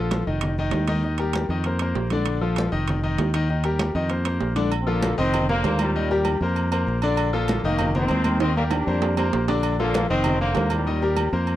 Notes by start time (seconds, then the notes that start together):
Already playing: A#1 F3 F4 A4
0.11 high conga, high timbale, low timbale
0.27 F1 D#3 D#4 D#5, high conga
0.41 high conga, low conga, high timbale
0.58 D#3 D#4 D#5, high conga
0.71 D#2, high conga, high timbale, low timbale
0.88 D#3 D#4 D#5, high conga, high timbale
1.03 D#3 D#4 D#5, high conga
1.18 G3 G4 A#4, high conga, high timbale
1.33 high conga, high timbale, low timbale
1.49 F2 D#3 D#4 D#5, high conga
1.64 A#3 A#4 C5, high conga, high timbale
1.79 A#3 A#4 C5, high conga, high timbale
1.95 A#1, high conga, low timbale
2.10 D3 D4 D5, high conga, high timbale
2.26 high conga, high timbale
2.41 F3 F4 A4, high conga
2.56 high conga, high timbale, low timbale
2.72 F1 D#3 D#4 D#5, high conga
2.88 high conga, low conga, high timbale
3.03 D#3 D#4 D#5, high conga
3.18 D#2, high conga, high timbale, low timbale
3.34 D#3 D#4 D#5, high timbale
3.50 D#3 D#4 D#5, high conga
3.64 G3 G4 A#4, high conga, high timbale
3.79 high conga, high timbale, low timbale
3.95 F2 D#3 D#4 D#5, high conga
4.10 A#3 A#4 C5, high conga, high timbale
4.25 A#3 A#4 C5, high conga, high timbale
4.41 A#1, high conga, low timbale
4.56 D3 D4 D5, high conga, high timbale
4.72 high conga, low agogo
4.81 C4
4.87 D3 F3 A#3 F4 A4, high conga
5.03 high conga, low agogo
5.18 F1 D#3 C4 D#4 D#5
5.34 high conga, low conga, low agogo
5.49 D3 A#3 A#4 C5, high conga, low conga
5.64 D#2 A#3 A#4 C5, high conga, low timbale, low agogo
5.79 A#2 G3, high conga, low agogo
5.96 D#3 D#4 D#5, high conga
6.11 G3 G4 A#4, high conga
6.25 high conga, low agogo
6.41 F2 A#3 A#4 C5
6.56 high conga, low agogo
6.72 A#3 A#4 C5, high conga, low agogo
6.87 A#1, high conga
7.02 D3 D4 D5, low agogo
7.17 high conga, low agogo
7.33 D3 F3 A#3 F4 A4, high conga
7.48 high conga, low agogo
7.64 F1 D#3 A#3 D#4 D#5
7.79 high conga, low conga, low agogo
7.95 D#3 A#3 C4 A#4 C5, high conga, low conga
8.08 D#2 A#3 A#4 C5, high conga, low agogo
8.24 high conga, low agogo
8.40 D#3 C4 D#4 D#5, high conga, high timbale
8.55 D3 G3 A#3 G4 A#4, high conga
8.71 G3 D4, high conga, high timbale, low agogo
8.87 F2 A#3 A#4 C5
9.02 high conga, low timbale, low agogo
9.17 A#3 A#4 C5, high conga, low timbale, low agogo
9.33 A#1, high conga, low timbale
9.48 D3 D4 D5, low timbale, low agogo
9.63 high conga, low agogo
9.79 D3 F3 A#3 F4 A4, high conga
9.94 high conga, low agogo
10.10 F1 D#3 C4 D#4 D#5
10.24 high conga, low conga, low agogo
10.40 D3 A#3 A#4 C5, high conga
10.55 D#2 A#3 A#4 C5, high conga, low timbale, low agogo
10.70 A#2 G3, high conga, low agogo
10.86 D#3 D#4 D#5, high conga
11.02 G3 G4 A#4, high conga
11.16 high conga, low agogo
11.33 F2 A#3 A#4 C5
11.47 high conga, low agogo